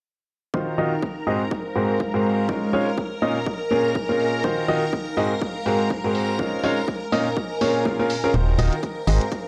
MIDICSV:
0, 0, Header, 1, 6, 480
1, 0, Start_track
1, 0, Tempo, 487805
1, 529, Time_signature, 4, 2, 24, 8
1, 9326, End_track
2, 0, Start_track
2, 0, Title_t, "String machine"
2, 0, Program_c, 0, 50
2, 529, Note_on_c, 0, 82, 79
2, 530, Note_on_c, 0, 70, 79
2, 8196, Note_off_c, 0, 70, 0
2, 8196, Note_off_c, 0, 82, 0
2, 8208, Note_on_c, 0, 70, 80
2, 8208, Note_on_c, 0, 82, 79
2, 9326, Note_off_c, 0, 70, 0
2, 9326, Note_off_c, 0, 82, 0
2, 9326, End_track
3, 0, Start_track
3, 0, Title_t, "Ambient pad"
3, 0, Program_c, 1, 92
3, 530, Note_on_c, 1, 63, 77
3, 792, Note_on_c, 1, 82, 84
3, 865, Note_on_c, 1, 77, 76
3, 867, Note_on_c, 1, 72, 86
3, 1252, Note_on_c, 1, 56, 87
3, 1730, Note_off_c, 1, 63, 0
3, 2847, Note_off_c, 1, 77, 0
3, 2848, Note_off_c, 1, 72, 0
3, 2848, Note_off_c, 1, 82, 0
3, 2869, Note_on_c, 1, 70, 86
3, 2888, Note_on_c, 1, 80, 76
3, 2889, Note_on_c, 1, 75, 81
3, 3411, Note_off_c, 1, 56, 0
3, 4371, Note_on_c, 1, 63, 89
3, 4585, Note_on_c, 1, 72, 84
3, 4664, Note_off_c, 1, 70, 0
3, 4664, Note_off_c, 1, 80, 0
3, 4665, Note_off_c, 1, 75, 0
3, 4708, Note_on_c, 1, 77, 91
3, 4709, Note_on_c, 1, 82, 87
3, 5090, Note_on_c, 1, 56, 77
3, 5570, Note_off_c, 1, 63, 0
3, 6467, Note_on_c, 1, 75, 80
3, 6568, Note_on_c, 1, 70, 90
3, 6688, Note_off_c, 1, 72, 0
3, 6688, Note_off_c, 1, 77, 0
3, 6689, Note_off_c, 1, 82, 0
3, 6727, Note_on_c, 1, 80, 92
3, 7249, Note_off_c, 1, 56, 0
3, 8206, Note_on_c, 1, 72, 87
3, 8404, Note_on_c, 1, 82, 78
3, 8504, Note_off_c, 1, 75, 0
3, 8504, Note_off_c, 1, 80, 0
3, 8505, Note_off_c, 1, 70, 0
3, 8538, Note_on_c, 1, 77, 89
3, 9326, Note_off_c, 1, 72, 0
3, 9326, Note_off_c, 1, 77, 0
3, 9326, Note_off_c, 1, 82, 0
3, 9326, End_track
4, 0, Start_track
4, 0, Title_t, "Upright piano"
4, 0, Program_c, 2, 0
4, 529, Note_on_c, 2, 51, 65
4, 529, Note_on_c, 2, 63, 59
4, 529, Note_on_c, 2, 65, 57
4, 529, Note_on_c, 2, 66, 59
4, 529, Note_on_c, 2, 72, 71
4, 735, Note_off_c, 2, 51, 0
4, 735, Note_off_c, 2, 63, 0
4, 735, Note_off_c, 2, 65, 0
4, 735, Note_off_c, 2, 66, 0
4, 735, Note_off_c, 2, 72, 0
4, 768, Note_on_c, 2, 51, 89
4, 769, Note_on_c, 2, 63, 80
4, 769, Note_on_c, 2, 65, 78
4, 769, Note_on_c, 2, 66, 80
4, 769, Note_on_c, 2, 75, 95
4, 910, Note_off_c, 2, 51, 0
4, 910, Note_off_c, 2, 63, 0
4, 910, Note_off_c, 2, 65, 0
4, 910, Note_off_c, 2, 66, 0
4, 910, Note_off_c, 2, 75, 0
4, 1248, Note_on_c, 2, 44, 80
4, 1248, Note_on_c, 2, 60, 75
4, 1248, Note_on_c, 2, 66, 74
4, 1248, Note_on_c, 2, 68, 72
4, 1248, Note_on_c, 2, 75, 89
4, 1390, Note_off_c, 2, 44, 0
4, 1390, Note_off_c, 2, 60, 0
4, 1390, Note_off_c, 2, 66, 0
4, 1390, Note_off_c, 2, 68, 0
4, 1390, Note_off_c, 2, 75, 0
4, 1728, Note_on_c, 2, 44, 73
4, 1728, Note_on_c, 2, 60, 68
4, 1728, Note_on_c, 2, 66, 67
4, 1728, Note_on_c, 2, 68, 65
4, 1728, Note_on_c, 2, 70, 79
4, 1934, Note_off_c, 2, 44, 0
4, 1934, Note_off_c, 2, 60, 0
4, 1934, Note_off_c, 2, 66, 0
4, 1934, Note_off_c, 2, 68, 0
4, 1934, Note_off_c, 2, 70, 0
4, 2106, Note_on_c, 2, 44, 74
4, 2106, Note_on_c, 2, 60, 66
4, 2106, Note_on_c, 2, 66, 66
4, 2106, Note_on_c, 2, 68, 66
4, 2106, Note_on_c, 2, 70, 80
4, 2424, Note_off_c, 2, 44, 0
4, 2424, Note_off_c, 2, 60, 0
4, 2424, Note_off_c, 2, 66, 0
4, 2424, Note_off_c, 2, 68, 0
4, 2424, Note_off_c, 2, 70, 0
4, 2448, Note_on_c, 2, 56, 65
4, 2448, Note_on_c, 2, 61, 59
4, 2448, Note_on_c, 2, 63, 60
4, 2448, Note_on_c, 2, 65, 59
4, 2448, Note_on_c, 2, 70, 72
4, 2654, Note_off_c, 2, 56, 0
4, 2654, Note_off_c, 2, 61, 0
4, 2654, Note_off_c, 2, 63, 0
4, 2654, Note_off_c, 2, 65, 0
4, 2654, Note_off_c, 2, 70, 0
4, 2688, Note_on_c, 2, 56, 88
4, 2688, Note_on_c, 2, 73, 99
4, 2689, Note_on_c, 2, 61, 78
4, 2689, Note_on_c, 2, 63, 81
4, 2689, Note_on_c, 2, 65, 83
4, 2830, Note_off_c, 2, 56, 0
4, 2830, Note_off_c, 2, 61, 0
4, 2830, Note_off_c, 2, 63, 0
4, 2830, Note_off_c, 2, 65, 0
4, 2830, Note_off_c, 2, 73, 0
4, 3169, Note_on_c, 2, 46, 82
4, 3169, Note_on_c, 2, 61, 75
4, 3169, Note_on_c, 2, 63, 76
4, 3169, Note_on_c, 2, 65, 75
4, 3169, Note_on_c, 2, 75, 93
4, 3310, Note_off_c, 2, 46, 0
4, 3310, Note_off_c, 2, 61, 0
4, 3310, Note_off_c, 2, 63, 0
4, 3310, Note_off_c, 2, 65, 0
4, 3310, Note_off_c, 2, 75, 0
4, 3649, Note_on_c, 2, 46, 74
4, 3649, Note_on_c, 2, 61, 67
4, 3649, Note_on_c, 2, 65, 67
4, 3649, Note_on_c, 2, 68, 69
4, 3649, Note_on_c, 2, 70, 79
4, 3855, Note_off_c, 2, 46, 0
4, 3855, Note_off_c, 2, 61, 0
4, 3855, Note_off_c, 2, 65, 0
4, 3855, Note_off_c, 2, 68, 0
4, 3855, Note_off_c, 2, 70, 0
4, 4025, Note_on_c, 2, 46, 75
4, 4025, Note_on_c, 2, 61, 67
4, 4025, Note_on_c, 2, 65, 67
4, 4026, Note_on_c, 2, 68, 67
4, 4026, Note_on_c, 2, 70, 79
4, 4344, Note_off_c, 2, 46, 0
4, 4344, Note_off_c, 2, 61, 0
4, 4344, Note_off_c, 2, 65, 0
4, 4344, Note_off_c, 2, 68, 0
4, 4344, Note_off_c, 2, 70, 0
4, 4368, Note_on_c, 2, 51, 67
4, 4368, Note_on_c, 2, 63, 60
4, 4368, Note_on_c, 2, 66, 59
4, 4368, Note_on_c, 2, 72, 73
4, 4369, Note_on_c, 2, 65, 62
4, 4574, Note_off_c, 2, 63, 0
4, 4575, Note_off_c, 2, 51, 0
4, 4575, Note_off_c, 2, 65, 0
4, 4575, Note_off_c, 2, 66, 0
4, 4575, Note_off_c, 2, 72, 0
4, 4608, Note_on_c, 2, 51, 89
4, 4608, Note_on_c, 2, 63, 84
4, 4608, Note_on_c, 2, 65, 82
4, 4608, Note_on_c, 2, 75, 100
4, 4609, Note_on_c, 2, 66, 82
4, 4750, Note_off_c, 2, 51, 0
4, 4750, Note_off_c, 2, 63, 0
4, 4750, Note_off_c, 2, 65, 0
4, 4750, Note_off_c, 2, 66, 0
4, 4750, Note_off_c, 2, 75, 0
4, 5088, Note_on_c, 2, 44, 84
4, 5088, Note_on_c, 2, 60, 76
4, 5088, Note_on_c, 2, 66, 75
4, 5088, Note_on_c, 2, 68, 75
4, 5088, Note_on_c, 2, 75, 94
4, 5230, Note_off_c, 2, 44, 0
4, 5230, Note_off_c, 2, 60, 0
4, 5230, Note_off_c, 2, 66, 0
4, 5230, Note_off_c, 2, 68, 0
4, 5230, Note_off_c, 2, 75, 0
4, 5569, Note_on_c, 2, 44, 74
4, 5569, Note_on_c, 2, 60, 70
4, 5569, Note_on_c, 2, 66, 70
4, 5569, Note_on_c, 2, 68, 69
4, 5569, Note_on_c, 2, 70, 82
4, 5775, Note_off_c, 2, 44, 0
4, 5775, Note_off_c, 2, 60, 0
4, 5775, Note_off_c, 2, 66, 0
4, 5775, Note_off_c, 2, 68, 0
4, 5775, Note_off_c, 2, 70, 0
4, 5946, Note_on_c, 2, 44, 73
4, 5946, Note_on_c, 2, 60, 67
4, 5946, Note_on_c, 2, 70, 83
4, 5947, Note_on_c, 2, 66, 68
4, 5947, Note_on_c, 2, 68, 69
4, 6265, Note_off_c, 2, 44, 0
4, 6265, Note_off_c, 2, 60, 0
4, 6265, Note_off_c, 2, 66, 0
4, 6265, Note_off_c, 2, 68, 0
4, 6265, Note_off_c, 2, 70, 0
4, 6288, Note_on_c, 2, 56, 67
4, 6288, Note_on_c, 2, 65, 61
4, 6289, Note_on_c, 2, 61, 61
4, 6289, Note_on_c, 2, 63, 61
4, 6289, Note_on_c, 2, 70, 72
4, 6494, Note_off_c, 2, 56, 0
4, 6494, Note_off_c, 2, 65, 0
4, 6495, Note_off_c, 2, 61, 0
4, 6495, Note_off_c, 2, 63, 0
4, 6495, Note_off_c, 2, 70, 0
4, 6529, Note_on_c, 2, 61, 84
4, 6529, Note_on_c, 2, 63, 80
4, 6530, Note_on_c, 2, 56, 89
4, 6530, Note_on_c, 2, 65, 81
4, 6530, Note_on_c, 2, 73, 97
4, 6671, Note_off_c, 2, 56, 0
4, 6671, Note_off_c, 2, 61, 0
4, 6671, Note_off_c, 2, 63, 0
4, 6671, Note_off_c, 2, 65, 0
4, 6671, Note_off_c, 2, 73, 0
4, 7009, Note_on_c, 2, 61, 75
4, 7009, Note_on_c, 2, 65, 77
4, 7009, Note_on_c, 2, 75, 92
4, 7010, Note_on_c, 2, 46, 84
4, 7010, Note_on_c, 2, 63, 76
4, 7151, Note_off_c, 2, 46, 0
4, 7151, Note_off_c, 2, 61, 0
4, 7151, Note_off_c, 2, 63, 0
4, 7151, Note_off_c, 2, 65, 0
4, 7151, Note_off_c, 2, 75, 0
4, 7490, Note_on_c, 2, 46, 80
4, 7490, Note_on_c, 2, 61, 75
4, 7490, Note_on_c, 2, 65, 75
4, 7490, Note_on_c, 2, 68, 75
4, 7490, Note_on_c, 2, 73, 89
4, 7705, Note_off_c, 2, 46, 0
4, 7705, Note_off_c, 2, 61, 0
4, 7705, Note_off_c, 2, 65, 0
4, 7705, Note_off_c, 2, 68, 0
4, 7705, Note_off_c, 2, 73, 0
4, 7730, Note_on_c, 2, 46, 74
4, 7730, Note_on_c, 2, 61, 68
4, 7730, Note_on_c, 2, 65, 67
4, 7730, Note_on_c, 2, 68, 67
4, 7730, Note_on_c, 2, 70, 81
4, 7846, Note_off_c, 2, 46, 0
4, 7846, Note_off_c, 2, 61, 0
4, 7846, Note_off_c, 2, 65, 0
4, 7846, Note_off_c, 2, 68, 0
4, 7846, Note_off_c, 2, 70, 0
4, 7866, Note_on_c, 2, 46, 91
4, 7867, Note_on_c, 2, 61, 81
4, 7867, Note_on_c, 2, 65, 85
4, 7867, Note_on_c, 2, 68, 81
4, 7867, Note_on_c, 2, 70, 102
4, 7975, Note_off_c, 2, 46, 0
4, 7975, Note_off_c, 2, 61, 0
4, 7975, Note_off_c, 2, 65, 0
4, 7975, Note_off_c, 2, 68, 0
4, 7975, Note_off_c, 2, 70, 0
4, 8107, Note_on_c, 2, 61, 80
4, 8107, Note_on_c, 2, 65, 73
4, 8107, Note_on_c, 2, 68, 72
4, 8107, Note_on_c, 2, 70, 90
4, 8194, Note_off_c, 2, 61, 0
4, 8194, Note_off_c, 2, 65, 0
4, 8194, Note_off_c, 2, 68, 0
4, 8194, Note_off_c, 2, 70, 0
4, 8209, Note_on_c, 2, 51, 67
4, 8209, Note_on_c, 2, 63, 62
4, 8415, Note_off_c, 2, 51, 0
4, 8415, Note_off_c, 2, 63, 0
4, 8449, Note_on_c, 2, 51, 88
4, 8449, Note_on_c, 2, 63, 83
4, 8449, Note_on_c, 2, 65, 81
4, 8449, Note_on_c, 2, 66, 82
4, 8449, Note_on_c, 2, 75, 98
4, 8590, Note_off_c, 2, 51, 0
4, 8590, Note_off_c, 2, 63, 0
4, 8590, Note_off_c, 2, 65, 0
4, 8590, Note_off_c, 2, 66, 0
4, 8590, Note_off_c, 2, 75, 0
4, 8928, Note_on_c, 2, 44, 82
4, 8928, Note_on_c, 2, 60, 75
4, 8928, Note_on_c, 2, 66, 76
4, 8928, Note_on_c, 2, 68, 75
4, 8928, Note_on_c, 2, 75, 92
4, 9070, Note_off_c, 2, 44, 0
4, 9070, Note_off_c, 2, 60, 0
4, 9070, Note_off_c, 2, 66, 0
4, 9070, Note_off_c, 2, 68, 0
4, 9070, Note_off_c, 2, 75, 0
4, 9326, End_track
5, 0, Start_track
5, 0, Title_t, "FM bass"
5, 0, Program_c, 3, 39
5, 8208, Note_on_c, 3, 27, 89
5, 8428, Note_off_c, 3, 27, 0
5, 8448, Note_on_c, 3, 27, 92
5, 8564, Note_off_c, 3, 27, 0
5, 8929, Note_on_c, 3, 32, 90
5, 9044, Note_off_c, 3, 32, 0
5, 9326, End_track
6, 0, Start_track
6, 0, Title_t, "Drums"
6, 529, Note_on_c, 9, 36, 103
6, 627, Note_off_c, 9, 36, 0
6, 1009, Note_on_c, 9, 36, 105
6, 1107, Note_off_c, 9, 36, 0
6, 1249, Note_on_c, 9, 46, 93
6, 1348, Note_off_c, 9, 46, 0
6, 1489, Note_on_c, 9, 36, 107
6, 1587, Note_off_c, 9, 36, 0
6, 1729, Note_on_c, 9, 46, 95
6, 1827, Note_off_c, 9, 46, 0
6, 1969, Note_on_c, 9, 36, 104
6, 2067, Note_off_c, 9, 36, 0
6, 2208, Note_on_c, 9, 46, 96
6, 2307, Note_off_c, 9, 46, 0
6, 2449, Note_on_c, 9, 36, 109
6, 2547, Note_off_c, 9, 36, 0
6, 2689, Note_on_c, 9, 46, 99
6, 2787, Note_off_c, 9, 46, 0
6, 2929, Note_on_c, 9, 36, 107
6, 3027, Note_off_c, 9, 36, 0
6, 3169, Note_on_c, 9, 46, 98
6, 3268, Note_off_c, 9, 46, 0
6, 3409, Note_on_c, 9, 36, 114
6, 3507, Note_off_c, 9, 36, 0
6, 3650, Note_on_c, 9, 46, 99
6, 3748, Note_off_c, 9, 46, 0
6, 3889, Note_on_c, 9, 36, 109
6, 3987, Note_off_c, 9, 36, 0
6, 4129, Note_on_c, 9, 46, 99
6, 4228, Note_off_c, 9, 46, 0
6, 4369, Note_on_c, 9, 36, 110
6, 4467, Note_off_c, 9, 36, 0
6, 4610, Note_on_c, 9, 46, 100
6, 4708, Note_off_c, 9, 46, 0
6, 4849, Note_on_c, 9, 36, 110
6, 4948, Note_off_c, 9, 36, 0
6, 5089, Note_on_c, 9, 46, 100
6, 5188, Note_off_c, 9, 46, 0
6, 5329, Note_on_c, 9, 36, 118
6, 5427, Note_off_c, 9, 36, 0
6, 5569, Note_on_c, 9, 46, 103
6, 5668, Note_off_c, 9, 46, 0
6, 5809, Note_on_c, 9, 36, 114
6, 5907, Note_off_c, 9, 36, 0
6, 6049, Note_on_c, 9, 46, 102
6, 6148, Note_off_c, 9, 46, 0
6, 6289, Note_on_c, 9, 36, 109
6, 6387, Note_off_c, 9, 36, 0
6, 6529, Note_on_c, 9, 46, 98
6, 6628, Note_off_c, 9, 46, 0
6, 6768, Note_on_c, 9, 36, 112
6, 6867, Note_off_c, 9, 36, 0
6, 7010, Note_on_c, 9, 46, 99
6, 7108, Note_off_c, 9, 46, 0
6, 7248, Note_on_c, 9, 36, 114
6, 7347, Note_off_c, 9, 36, 0
6, 7489, Note_on_c, 9, 46, 101
6, 7588, Note_off_c, 9, 46, 0
6, 7728, Note_on_c, 9, 36, 110
6, 7827, Note_off_c, 9, 36, 0
6, 7969, Note_on_c, 9, 46, 101
6, 8067, Note_off_c, 9, 46, 0
6, 8208, Note_on_c, 9, 36, 109
6, 8209, Note_on_c, 9, 42, 46
6, 8306, Note_off_c, 9, 36, 0
6, 8307, Note_off_c, 9, 42, 0
6, 8449, Note_on_c, 9, 46, 99
6, 8547, Note_off_c, 9, 46, 0
6, 8586, Note_on_c, 9, 42, 56
6, 8685, Note_off_c, 9, 42, 0
6, 8688, Note_on_c, 9, 36, 106
6, 8689, Note_on_c, 9, 42, 45
6, 8786, Note_off_c, 9, 36, 0
6, 8788, Note_off_c, 9, 42, 0
6, 8929, Note_on_c, 9, 46, 98
6, 9027, Note_off_c, 9, 46, 0
6, 9065, Note_on_c, 9, 42, 58
6, 9164, Note_off_c, 9, 42, 0
6, 9168, Note_on_c, 9, 36, 113
6, 9169, Note_on_c, 9, 42, 46
6, 9266, Note_off_c, 9, 36, 0
6, 9267, Note_off_c, 9, 42, 0
6, 9326, End_track
0, 0, End_of_file